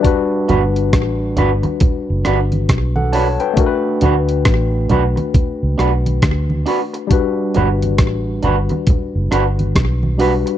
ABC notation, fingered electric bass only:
X:1
M:4/4
L:1/16
Q:"Swing 16ths" 1/4=68
K:Glyd
V:1 name="Fingered electric bass" clef=bass
z2 G,,,2 A,,,2 G,,, z2 F,,, G,,,2 B,,,3 z | z2 D,,2 A,,,2 B,,, z2 C,, B,,,2 D,,2 z2 | z2 G,,,2 A,,,2 G,,, z2 F,,, G,,,2 B,,,3 z |]